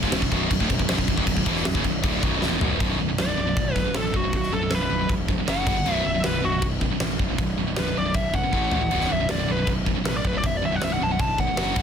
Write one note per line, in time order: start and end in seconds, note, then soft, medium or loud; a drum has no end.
0.03 0.21 C#1 loud
0.03 0.21 C#2 loud
0.03 0.22 G#2 loud
0.03 0.22 C#3 loud
0.03 kick medium
0.03 snare soft
0.12 snare loud
0.12 crash medium
0.22 0.31 B0 medium
0.22 0.30 B1 medium
0.22 0.31 F#2 medium
0.22 kick medium
0.31 0.49 B0 loud
0.31 0.50 B1 medium
0.31 0.50 F#2 loud
0.31 0.51 B2 loud
0.31 kick medium
0.31 crash medium
0.51 0.60 B0 medium
0.51 0.60 B1 medium
0.51 0.61 F#2 medium
0.51 kick loud
0.51 crash medium
0.60 0.69 D1 loud
0.60 0.70 D2 medium
0.60 0.70 A2 loud
0.60 kick medium
0.70 0.79 B0 medium
0.70 0.79 B1 medium
0.70 0.79 F#2 medium
0.70 kick medium
0.70 crash medium
0.79 0.88 B0 medium
0.79 0.88 B1 medium
0.79 0.89 F#2 medium
0.79 kick medium
0.89 0.98 B0 loud
0.89 0.98 B1 medium
0.89 0.99 F#2 loud
0.89 snare loud
0.89 crash loud
0.98 1.07 B0 medium
0.98 1.08 B1 medium
0.98 1.09 F#2 medium
0.98 kick medium
1.08 1.17 B0 medium
1.08 1.18 B1 medium
1.08 1.19 F#2 medium
1.08 kick medium
1.08 crash medium
1.18 1.26 D1 medium
1.18 1.27 D2 medium
1.18 1.27 A2 medium
1.18 kick medium
1.27 1.36 B0 medium
1.27 1.36 B1 medium
1.27 1.37 F#2 medium
1.27 kick medium
1.27 crash medium
1.37 1.46 B0 medium
1.37 1.46 B1 medium
1.37 1.47 F#2 medium
1.37 kick medium
1.46 1.64 E1 medium
1.46 1.65 E2 medium
1.46 1.65 B2 medium
1.46 1.66 E3 loud
1.46 kick medium
1.46 crash medium
1.56 snare soft
1.65 1.74 B0 medium
1.65 1.76 B1 medium
1.65 1.75 F#2 medium
1.65 snare loud
1.65 crash medium
1.75 1.84 F#1 loud
1.75 1.85 F#2 medium
1.75 1.85 C#3 medium
1.75 kick loud
1.84 2.02 B0 medium
1.84 2.00 B1 medium
1.84 2.01 F#2 medium
1.84 kick medium
1.84 crash medium
2.03 2.22 D1 loud
2.03 2.22 D2 medium
2.03 2.23 A2 loud
2.03 2.23 D3 loud
2.03 kick loud
2.03 crash medium
2.23 2.41 B0 loud
2.23 2.41 B1 loud
2.23 2.42 F#2 loud
2.23 2.42 B2 loud
2.23 kick loud
2.23 crash medium
2.41 2.50 D1 loud
2.41 2.51 D2 loud
2.41 2.52 A2 loud
2.41 snare medium
2.51 2.59 E1 loud
2.51 2.60 E2 medium
2.51 2.61 B2 medium
2.60 2.78 B0 loud
2.60 2.79 B1 loud
2.60 2.79 F#2 loud
2.60 2.80 B2 loud
2.60 floor tom loud
2.80 2.95 B0 loud
2.80 2.98 B1 medium
2.80 2.98 F#2 medium
2.80 2.98 B2 medium
2.80 kick loud
2.80 crash medium
2.98 3.14 B0 medium
2.98 3.07 B1 medium
2.98 3.07 F#2 medium
3.08 3.17 B1 medium
3.08 3.18 F#2 medium
3.18 3.33 B0 medium
3.18 3.27 B1 medium
3.18 3.27 F#2 medium
3.18 3.74 D5 loud
3.18 snare loud
3.18 crash medium
3.28 3.36 B1 medium
3.28 3.36 F#2 medium
3.37 3.52 B0 medium
3.37 3.47 B1 medium
3.37 3.46 F#2 medium
3.47 3.56 B1 medium
3.47 3.56 F#2 medium
3.57 3.87 B0 medium
3.57 3.74 B1 medium
3.57 3.74 F#2 medium
3.57 kick loud
3.57 crash medium
3.74 3.85 B1 medium
3.74 3.84 F#2 medium
3.74 3.94 B4 loud
3.74 kick medium
3.74 snare soft
3.86 3.94 B1 medium
3.86 3.94 F#2 medium
3.94 4.10 A1 medium
3.94 4.12 B1 medium
3.94 4.12 F#2 medium
3.94 4.16 A4 medium
3.94 snare loud
3.94 crash medium
4.14 4.29 B0 medium
4.14 4.23 B1 medium
4.14 4.22 F#2 medium
4.14 4.34 F#4 medium
4.14 kick medium
4.24 4.32 B1 medium
4.24 4.33 F#2 medium
4.33 4.48 B0 medium
4.33 4.51 B1 medium
4.33 4.51 F#2 medium
4.33 4.53 F#4 loud
4.33 kick loud
4.33 crash medium
4.43 snare soft
4.52 4.67 B0 medium
4.52 4.61 B1 medium
4.52 4.60 F#2 medium
4.52 4.74 A4 medium
4.61 4.70 B1 medium
4.61 4.70 F#2 medium
4.71 4.86 B0 medium
4.71 4.80 B1 medium
4.71 4.80 F#2 medium
4.71 5.10 B4 loud
4.71 snare loud
4.71 crash medium
4.81 4.89 B1 medium
4.81 4.89 F#2 medium
4.90 5.05 B0 loud
4.90 4.98 B1 medium
4.90 4.98 F#2 medium
4.99 5.07 B1 medium
4.99 5.08 F#2 medium
5.08 5.39 E1 medium
5.08 5.26 B1 medium
5.08 5.26 F#2 medium
5.08 kick loud
5.08 crash medium
5.28 5.37 B1 medium
5.28 5.36 F#2 medium
5.28 kick medium
5.38 5.46 B1 medium
5.38 5.45 F#2 medium
5.47 5.67 F#1 medium
5.47 5.65 F#2 medium
5.47 5.65 C#3 loud
5.47 5.66 F#3 loud
5.47 5.93 F#5 loud
5.47 snare loud
5.47 crash medium
5.66 5.82 G1 loud
5.66 5.75 G2 medium
5.66 5.75 D3 medium
5.66 5.76 G3 loud
5.66 kick loud
5.66 crash medium
5.77 5.85 G2 medium
5.77 5.86 D3 medium
5.85 6.01 B0 medium
5.85 6.04 B1 medium
5.85 6.04 F#2 medium
5.85 6.04 B2 medium
5.85 crash medium
5.93 6.04 E5 loud
6.05 6.20 B0 medium
6.05 6.14 B1 medium
6.05 6.13 F#2 medium
6.05 6.24 E5 medium
6.14 6.23 B1 medium
6.14 6.23 F#2 medium
6.24 6.39 B0 medium
6.24 6.32 B1 medium
6.24 6.32 F#2 medium
6.24 6.44 B4 medium
6.24 snare loud
6.24 crash medium
6.33 6.41 B1 medium
6.33 6.41 F#2 medium
6.42 6.58 B0 medium
6.42 6.51 B1 medium
6.42 6.51 F#2 medium
6.42 6.63 F#4 medium
6.52 6.61 B1 medium
6.52 6.61 F#2 medium
6.62 6.92 B0 medium
6.62 6.79 B1 medium
6.62 6.79 F#2 medium
6.62 kick loud
6.62 crash medium
6.81 6.90 B1 medium
6.81 6.90 F#2 medium
6.81 kick medium
6.91 6.99 B1 medium
6.91 7.00 F#2 medium
7.00 7.15 A1 medium
7.00 7.18 B1 medium
7.00 7.18 F#2 medium
7.00 snare loud
7.00 crash medium
7.19 7.34 B0 medium
7.19 7.29 B1 medium
7.19 7.29 F#2 medium
7.19 kick medium
7.30 7.38 B1 medium
7.30 7.38 F#2 medium
7.38 7.53 B0 medium
7.38 7.56 B1 medium
7.38 7.56 F#2 medium
7.38 kick loud
7.38 crash medium
7.58 7.73 B0 medium
7.58 7.67 B1 medium
7.58 7.67 F#2 medium
7.68 7.75 B1 medium
7.68 7.75 F#2 medium
7.76 7.92 B0 medium
7.76 7.86 B1 medium
7.76 7.85 F#2 medium
7.76 7.98 B4 loud
7.76 snare loud
7.76 crash medium
7.87 7.95 B1 medium
7.87 7.95 F#2 medium
7.96 8.11 B0 medium
7.96 8.05 B1 medium
7.96 8.04 F#2 medium
7.96 8.15 D5 medium
8.05 8.13 B1 medium
8.05 8.14 F#2 medium
8.14 8.44 B0 loud
8.14 8.32 B1 medium
8.14 8.32 F#2 medium
8.14 8.33 E5 loud
8.14 kick loud
8.14 crash medium
8.33 8.42 B1 medium
8.33 8.42 F#2 medium
8.33 9.08 F#5 loud
8.33 kick medium
8.43 8.52 B1 medium
8.43 8.52 F#2 medium
8.52 8.67 A1 loud
8.52 8.70 A2 medium
8.52 8.71 E3 medium
8.52 8.71 A3 medium
8.52 kick medium
8.71 8.87 A1 medium
8.71 8.80 A2 medium
8.71 8.80 E3 medium
8.71 8.81 A3 loud
8.71 floor tom medium
8.81 8.90 A2 medium
8.81 8.91 E3 medium
8.91 9.06 B0 loud
8.91 9.09 B1 medium
8.91 9.09 F#2 medium
8.91 9.09 B2 loud
8.91 crash medium
9.01 snare soft
9.10 9.25 B0 medium
9.10 9.19 B1 medium
9.10 9.19 F#2 medium
9.10 9.30 E5 loud
9.20 9.29 B1 medium
9.20 9.29 F#2 medium
9.29 9.44 B0 medium
9.29 9.38 B1 medium
9.29 9.38 F#2 medium
9.29 9.48 D5 loud
9.29 snare loud
9.29 crash medium
9.39 9.48 B1 medium
9.39 9.47 F#2 medium
9.48 9.63 B0 medium
9.48 9.58 B1 medium
9.48 9.57 F#2 medium
9.52 9.68 B4 loud
9.58 9.68 B1 medium
9.58 9.67 F#2 medium
9.67 9.97 B0 medium
9.67 9.85 B1 medium
9.67 9.85 F#2 medium
9.67 kick loud
9.67 crash medium
9.86 9.95 B1 medium
9.86 9.95 F#2 medium
9.86 kick medium
9.96 10.05 B1 medium
9.96 10.05 F#2 medium
10.05 10.20 A1 loud
10.05 10.22 B1 medium
10.05 10.23 F#2 medium
10.05 10.16 B4 loud
10.05 snare loud
10.05 crash medium
10.17 10.27 D5 loud
10.25 10.39 B0 medium
10.25 10.33 B1 medium
10.25 10.33 F#2 medium
10.25 10.37 B4 medium
10.25 kick medium
10.34 10.42 B1 medium
10.34 10.43 F#2 medium
10.34 10.44 D5 loud
10.43 10.58 B0 medium
10.43 10.60 B1 medium
10.43 10.61 F#2 medium
10.43 10.57 E5 loud
10.43 kick loud
10.43 crash medium
10.57 10.64 D5 loud
10.63 10.77 B0 medium
10.63 10.71 B1 medium
10.63 10.71 F#2 medium
10.63 10.76 E5 loud
10.72 10.80 B1 medium
10.72 10.81 F#2 medium
10.72 10.83 F#5 medium
10.81 10.96 B0 medium
10.81 10.90 B1 medium
10.81 10.90 F#2 medium
10.81 10.92 E5 loud
10.81 snare loud
10.81 crash medium
10.91 11.00 B1 medium
10.91 11.00 F#2 medium
10.91 11.01 F#5 medium
11.01 11.15 B0 medium
11.01 11.10 B1 medium
11.01 11.10 F#2 medium
11.01 11.12 A5 medium
11.11 11.19 B1 medium
11.11 11.19 F#2 medium
11.11 11.20 F#5 medium
11.19 11.49 B0 medium
11.19 11.37 B1 medium
11.19 11.37 F#2 medium
11.19 11.40 A5 loud
11.19 kick loud
11.19 crash medium
11.38 11.47 B1 medium
11.38 11.46 F#2 medium
11.38 11.82 F#5 loud
11.38 kick medium
11.48 11.57 B1 medium
11.48 11.56 F#2 medium
11.57 11.72 F#1 medium
11.57 11.75 F#2 medium
11.57 11.75 C#3 loud
11.57 11.76 F#3 loud
11.57 snare loud
11.57 crash medium
11.76 11.82 G1 loud
11.76 11.82 G2 loud
11.76 11.82 D3 loud
11.76 11.82 G3 loud
11.76 kick loud
11.76 crash loud